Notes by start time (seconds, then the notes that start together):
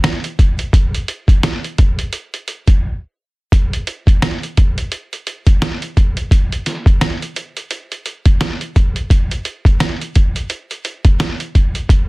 0.04 snare, closed hi-hat
0.24 closed hi-hat
0.39 kick, closed hi-hat
0.59 closed hi-hat
0.73 kick, closed hi-hat
0.95 closed hi-hat
1.08 closed hi-hat
1.28 kick, closed hi-hat
1.43 snare, closed hi-hat
1.64 closed hi-hat
1.78 kick, closed hi-hat
1.99 closed hi-hat
2.13 closed hi-hat
2.34 closed hi-hat
2.48 closed hi-hat
2.67 kick, closed hi-hat
3.52 kick, closed hi-hat
3.73 closed hi-hat
3.87 closed hi-hat
4.07 kick, closed hi-hat
4.22 snare, closed hi-hat
4.43 closed hi-hat
4.57 kick, closed hi-hat
4.78 closed hi-hat
4.92 closed hi-hat
5.13 closed hi-hat
5.27 closed hi-hat
5.47 kick, closed hi-hat
5.62 snare, closed hi-hat
5.82 closed hi-hat
5.97 kick, closed hi-hat
6.17 closed hi-hat
6.31 kick, closed hi-hat
6.52 closed hi-hat
6.66 snare, closed hi-hat
6.86 kick, closed hi-hat
7.01 snare, closed hi-hat
7.22 closed hi-hat
7.36 closed hi-hat
7.57 closed hi-hat
7.71 closed hi-hat
7.92 closed hi-hat
8.06 closed hi-hat
8.26 kick, closed hi-hat
8.41 snare, closed hi-hat
8.61 closed hi-hat
8.76 kick, closed hi-hat
8.96 closed hi-hat
9.10 kick, closed hi-hat
9.31 closed hi-hat
9.45 closed hi-hat
9.65 kick, closed hi-hat
9.80 snare, closed hi-hat
10.01 closed hi-hat
10.15 kick, closed hi-hat
10.36 closed hi-hat
10.50 closed hi-hat
10.71 closed hi-hat
10.85 closed hi-hat
11.05 kick, closed hi-hat
11.20 snare, closed hi-hat
11.40 closed hi-hat
11.55 kick, closed hi-hat
11.75 closed hi-hat
11.89 kick, closed hi-hat